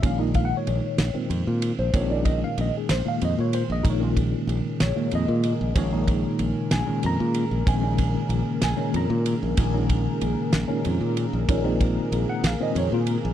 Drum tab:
RD |xxxxxx|xxxxxx|xxxxxx|xxxxxx|
SD |---o--|---o--|---o--|---o--|
BD |oo----|oo----|oo----|oo----|

RD |xxxxxx|xxxxxx|xxxxxx|
SD |---o--|---o--|---o--|
BD |oo----|oo----|oo----|